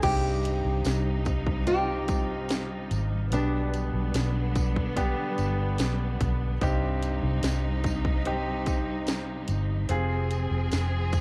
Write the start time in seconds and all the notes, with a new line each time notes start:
0.02 C2 G2 C3 G3 C4 D#4 G4, kick, closed hi-hat, crash, tambourine
0.43 closed hi-hat, tambourine
0.65 C2
0.85 C2, snare, closed hi-hat, tambourine
1.25 kick, closed hi-hat, tambourine
1.47 kick
1.67 C4 D#4 F4 G4, closed hi-hat, tambourine
2.08 kick, closed hi-hat, tambourine
2.49 snare, closed hi-hat, tambourine
2.91 G#1, closed hi-hat, tambourine
3.31 B1 B2 D3 G3 B3 D4 G4, closed hi-hat, tambourine
3.74 closed hi-hat, tambourine
3.94 B1
4.14 B1, snare, closed hi-hat, tambourine
4.55 kick, closed hi-hat, tambourine
4.76 kick
4.96 B3 D4 G4, kick, closed hi-hat, tambourine
5.38 G1, closed hi-hat, tambourine
5.78 B1, snare, closed hi-hat, tambourine
6.21 B1, kick, closed hi-hat, tambourine
6.61 C2 G2 C3 G3 C4 D#4 G4, kick, closed hi-hat, tambourine
7.03 closed hi-hat, tambourine
7.23 C2
7.43 C2, snare, closed hi-hat, tambourine
7.84 kick, closed hi-hat, tambourine
8.05 kick
8.25 C4 D#4 G4, closed hi-hat
8.66 kick, closed hi-hat, tambourine
9.07 snare, closed hi-hat, tambourine
9.48 G1, closed hi-hat, tambourine
9.89 F1 C3 F3 C4 F4 G#4, closed hi-hat, tambourine
10.31 closed hi-hat, tambourine
10.51 F1
10.72 F1, snare, closed hi-hat, tambourine
11.12 kick, closed hi-hat, tambourine